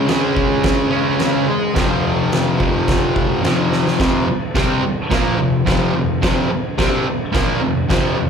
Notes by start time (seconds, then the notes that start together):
0.06 C#3 G#3, snare, crash
0.11 C#4
0.37 kick
0.63 kick, snare, crash
0.91 G#3 C#4
0.96 C#3
1.19 snare, crash
1.74 F2 C3, kick, snare, crash
1.79 F3
2.32 snare, crash
2.58 C3 F3, kick
2.64 F2
2.88 kick, snare, crash
3.16 kick
3.42 F2 C3, snare, crash
3.47 F3
3.73 snare
3.87 snare
3.99 F2 C3 F3, kick, snare, crash
4.28 muted distorted electric guitar stroke
4.55 C3 G3 C4, kick, snare, crash
5.10 A#2 F3 A#3, kick, snare, crash
5.39 F2 C3
5.66 F2 C3 F3, kick, snare, crash
5.95 F2 C3
6.22 F2 C3 F3, kick, snare, crash
6.51 muted distorted electric guitar stroke
6.78 C3 G3 C4, kick, snare, crash
7.32 A#2 F3 A#3, kick, snare, crash
7.61 F2 C3
7.88 F2 C3 F3, kick, snare, crash
8.16 F2 C3